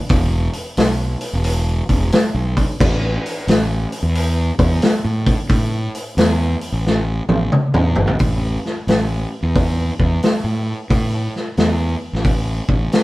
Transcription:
0.09 E1, kick, open hi-hat
0.53 open hi-hat
0.77 B1, snare, open hi-hat
1.21 open hi-hat
1.33 E1
1.44 open hi-hat
1.89 E1, kick, open hi-hat
2.12 snare, open hi-hat
2.34 B1
2.57 kick, open hi-hat
2.80 A1, kick, crash
3.26 open hi-hat
3.47 A1, snare, open hi-hat
3.92 open hi-hat
4.03 E2
4.15 open hi-hat
4.59 E2, kick, open hi-hat
4.82 snare, open hi-hat
5.04 A2
5.26 kick, open hi-hat
5.49 A2, kick, open hi-hat
5.95 open hi-hat
6.17 E2, snare, open hi-hat
6.61 open hi-hat
6.72 A1
6.86 snare
7.29 A1, high tom
7.52 mid tom
7.74 E2, mid tom
7.96 G1, floor tom
8.07 A1, floor tom
8.19 A1, kick, open hi-hat
8.65 snare
8.87 A1, snare, open hi-hat
9.43 E2
9.55 kick, open hi-hat
9.99 E2, kick
10.22 snare, open hi-hat
10.44 A2
10.90 A2, kick, open hi-hat
11.36 snare
11.57 E2, snare, open hi-hat
12.13 A1, snare
12.24 kick, open hi-hat
12.68 A1, kick
12.92 snare, open hi-hat

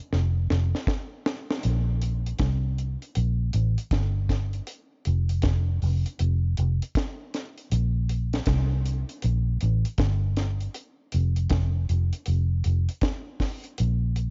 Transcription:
0.13 F1, snare
0.50 F1, snare
0.75 snare
0.87 kick, snare
1.26 snare
1.51 snare
1.63 A#1, closed hi-hat
2.02 closed hi-hat
2.26 closed hi-hat
2.39 C2, kick, snare, closed hi-hat
2.78 closed hi-hat
3.02 closed hi-hat
3.15 A#1, closed hi-hat
3.53 A1, closed hi-hat
3.78 closed hi-hat
3.91 G1, kick, snare, closed hi-hat
4.29 kick, snare, closed hi-hat
4.53 closed hi-hat
4.67 closed hi-hat
5.05 F1, closed hi-hat
5.29 closed hi-hat
5.42 F1, kick, snare, closed hi-hat
5.82 F1, open hi-hat
6.06 closed hi-hat
6.19 F1, closed hi-hat
6.57 F1, closed hi-hat
6.82 closed hi-hat
6.95 kick, snare, closed hi-hat
7.34 snare, closed hi-hat
7.58 closed hi-hat
7.72 A#1, closed hi-hat
8.09 closed hi-hat
8.33 snare, closed hi-hat
8.46 C2, kick, snare, closed hi-hat
8.86 closed hi-hat
9.09 closed hi-hat
9.22 A#1, closed hi-hat
9.61 A1, closed hi-hat
9.85 closed hi-hat
9.98 G1, kick, snare, closed hi-hat
10.37 snare, closed hi-hat
10.60 closed hi-hat
10.74 closed hi-hat
11.12 F1, closed hi-hat
11.36 closed hi-hat
11.50 F1, kick, snare, closed hi-hat
11.89 F1, closed hi-hat
12.13 closed hi-hat
12.26 F1, closed hi-hat
12.64 F1, closed hi-hat
12.89 closed hi-hat
13.01 kick, snare, closed hi-hat
13.40 kick, snare, open hi-hat
13.64 closed hi-hat
13.78 A#1, closed hi-hat
14.16 closed hi-hat

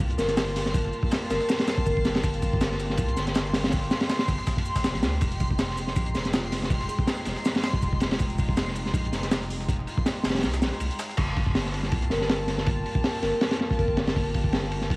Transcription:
Already playing: A#3 F4 G4 A5 C6
0.00 C2, open hi-hat
0.10 closed hi-hat
0.18 G1 A#4, snare, open hi-hat, shaker
0.28 snare, closed hi-hat
0.37 snare, open hi-hat, shaker
0.47 snare
0.56 snare, open hi-hat
0.66 snare
0.74 kick, open hi-hat, shaker
0.85 snare
0.93 open hi-hat, shaker
1.03 kick
1.11 snare, open hi-hat, shaker
1.30 G1 A#4, snare, open hi-hat, shaker
1.40 snare
1.49 snare, open hi-hat, shaker
1.59 snare, open hi-hat
1.68 snare, open hi-hat, shaker
1.78 kick
1.86 G1 A#4, kick, open hi-hat, shaker
1.97 kick
2.05 snare, open hi-hat, shaker
2.15 snare, open hi-hat
2.24 G1, kick, open hi-hat, shaker
2.34 closed hi-hat
2.42 kick, open hi-hat, shaker
2.53 kick
2.61 snare, open hi-hat, shaker
2.72 snare
2.80 open hi-hat, shaker
2.90 snare
2.97 C2, kick, open hi-hat, shaker
3.08 closed hi-hat
3.17 G1, snare, open hi-hat, shaker
3.27 snare, closed hi-hat
3.34 snare, open hi-hat, shaker
3.45 snare
3.53 snare, open hi-hat
3.64 snare, open hi-hat
3.68 snare, open hi-hat
3.72 kick, open hi-hat, shaker
3.83 snare
3.91 snare, open hi-hat, shaker
4.01 snare, open hi-hat
4.10 snare, open hi-hat, shaker
4.19 snare, open hi-hat
4.28 G1, kick, snare, open hi-hat, shaker
4.39 snare
4.47 kick, snare, open hi-hat, shaker
4.57 kick, open hi-hat
4.66 shaker
4.76 kick, snare, open hi-hat, shaker
4.84 F1, snare, open hi-hat, shaker
4.95 A#1, snare, open hi-hat
5.03 D2, snare, open hi-hat, shaker
5.21 F1 G#3 D#4 F4, kick, open hi-hat, shaker
5.32 closed hi-hat
5.40 kick, open hi-hat, shaker
5.51 kick
5.59 snare, open hi-hat, shaker
5.70 snare
5.77 open hi-hat, shaker
5.87 snare
5.96 A#1, kick, open hi-hat, shaker
6.06 closed hi-hat
6.14 F1 G#4, snare, open hi-hat, shaker
6.25 snare, closed hi-hat
6.33 F4, snare, open hi-hat, shaker
6.43 snare
6.52 snare, open hi-hat
6.62 snare
6.70 kick, open hi-hat, shaker
6.81 snare
6.89 G#4, open hi-hat, shaker
6.99 kick
7.08 snare, open hi-hat, shaker
7.26 F1, snare, open hi-hat, shaker
7.37 snare
7.45 snare, open hi-hat, shaker
7.55 snare, open hi-hat
7.64 snare, open hi-hat, shaker
7.74 kick
7.82 F1, kick, open hi-hat, shaker
7.93 kick
8.00 snare, open hi-hat, shaker
8.11 snare, open hi-hat
8.19 F1, kick, open hi-hat, shaker
8.30 closed hi-hat
8.39 kick, open hi-hat, shaker
8.49 kick
8.57 snare, open hi-hat, shaker
8.68 snare
8.76 open hi-hat, shaker
8.86 snare
8.94 A#1, kick, open hi-hat, shaker
9.05 closed hi-hat
9.13 F1, snare, open hi-hat, shaker
9.23 snare, closed hi-hat
9.32 snare, open hi-hat, shaker
9.42 snare
9.50 open hi-hat
9.61 snare
9.69 kick, open hi-hat, shaker
9.79 snare
9.87 open hi-hat, shaker
9.98 kick
10.06 snare, open hi-hat, shaker
10.24 F1, snare, open hi-hat, shaker
10.29 snare, open hi-hat
10.35 snare, open hi-hat
10.38 snare, open hi-hat
10.43 C2, snare, open hi-hat, shaker
10.54 snare, closed hi-hat, shaker
10.62 A#1, snare, open hi-hat, shaker
10.72 snare
10.80 C2, open hi-hat, shaker
10.91 closed hi-hat
10.99 snare, open hi-hat, shaker
11.10 snare
11.17 G1 A#3 F4 G4 A5, kick, open hi-hat, crash
11.37 kick, open hi-hat
11.47 kick
11.55 snare, open hi-hat
11.66 snare
11.74 open hi-hat
11.83 snare
11.92 C2, kick, open hi-hat
12.02 closed hi-hat
12.10 G1 A#4, snare, open hi-hat
12.21 snare
12.29 snare, open hi-hat
12.48 snare, open hi-hat
12.58 snare
12.66 kick, open hi-hat
12.86 open hi-hat
12.95 kick
13.04 snare, open hi-hat
13.22 G1 A#4, snare, open hi-hat
13.41 snare, open hi-hat
13.51 snare, open hi-hat
13.60 snare, open hi-hat
13.71 kick
13.79 G1 A#4, kick, open hi-hat
13.88 kick
13.97 snare, open hi-hat
14.07 snare, open hi-hat
14.16 G1, kick, open hi-hat
14.34 kick, open hi-hat
14.44 kick
14.53 snare, open hi-hat
14.63 snare
14.72 open hi-hat
14.81 snare
14.90 C2, kick, open hi-hat

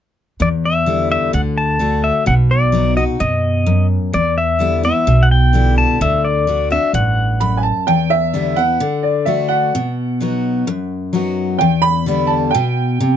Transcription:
0.40 E2 D5
0.65 E5
0.86 D3 G3 B3 E4
1.12 E5
1.33 D2 D3 F#5
1.58 A5
1.79 D3 A3 D4 F#4
2.04 E5
2.26 B1 B2 F#5
2.51 D5
2.72 F#3 B3 D#4 F#4
2.97 D#4 F#4 D#5
3.20 F#2 B2 D#5
3.66 F#2
4.13 E2 D5
4.38 E5
4.59 D3 G3 B3 E4
4.83 B3 E4 E5
5.07 B1 B2
5.23 F#5
5.31 G5
5.53 D3 G3 B3 E4
5.78 A5
6.01 D2 D3 E5
6.25 D5
6.47 D3 A3 D4 F#4
6.70 D4 F#4 E5
6.93 A1 G2 F#5
7.40 F#2 B5
7.57 G#5
7.63 A5
7.87 E2 G5
8.10 E5
8.33 D3 G3 B3 E4
8.56 B3 E4 F#5
8.80 D3
9.03 D5
9.25 D3 A3 D4 F#4 E5
9.48 F#5
9.75 B2
10.20 F#3 B3 D#4 F#4
10.67 F#2
11.13 F#3 B3 D#4 F#4
11.58 E2 G5
11.82 B5
12.06 D3 G3 B3 E4
12.27 A5
12.51 B2 G5
13.00 C3

